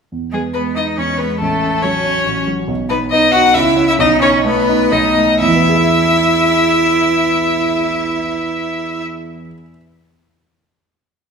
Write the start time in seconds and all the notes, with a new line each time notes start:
0.12 E2
0.32 G#3 B3 G#4
0.54 G#3 B3 B4
0.74 B3 D#4 D#5
0.98 E2 C#4 C#5
1.18 G#3 B3 B4
1.39 A1 A3 A4
1.62 C#4
1.82 F#3 C#4 C#5
2.04 C#4
2.26 A1
2.47 F#3
2.68 B1
2.89 B3 D#4 B4
3.10 B3 D#4 D#5
3.32 D#4 F#4 F#5
3.54 C#2 E4 E5
3.76 C#4 E4
3.88 E4 E5
3.98 B1 D#4 D#5
4.21 C#4 D#4 C#5
4.44 A3 B3 B4
4.69 D#4
4.91 B1 D#4 D#5
5.17 A3
5.40 E2 E4 E5
5.48 E3
5.55 B3
5.62 E4
5.69 G#4
5.76 E5